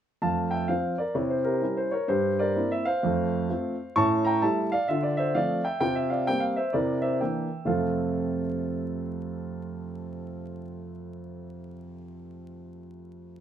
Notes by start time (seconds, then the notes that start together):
0.22 F2 A3 F5 A5
0.51 E5 G5
0.68 F3 C4 F4 C5 F5
0.98 A#4 D5
1.15 C3 E4 C#5
1.30 C5
1.44 G4 A#4
1.61 G3 C#4 E4
1.77 C5
1.91 A#4 C#5
2.08 G2 G4 C5
2.39 A#4 D5
2.56 A#3 C4 E4
2.71 E5
2.85 C5 F5
3.03 F2 A3
3.49 A3 C4 F4
3.96 A2 C#4 A5 C#6
4.25 G5 A#5
4.42 G3 A3 E4 E5 A5
4.72 D5 F5
4.88 D3 F4 E5
5.03 D5
5.17 C5 E5
5.35 F3 A3 C4 D5 F5
5.64 E5 G5
5.80 C3 F4 G5
5.95 E5
6.10 D5 F5
6.27 G3 A#3 C4 G5
6.40 F5
6.56 C5 E5
6.73 C3 E4 A#4 D5
7.02 C5 E5
7.20 E3 A#3 D4 E5 G5
7.65 F2 C3 A3 C4 F4 A4 F5